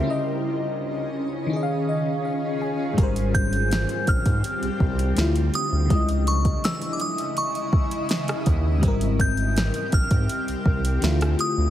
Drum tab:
HH |----------------|xxxxxxxxxx-xxxx-|xxxxxxxxxx-xxxx-|xxxxxxxxxx-xxxx-|
SD |----------------|----o-------o---|----o-------or--|----o-------or--|
BD |----------------|o-o---oo--o-----|o--o------o---o-|o-o---oo--o-----|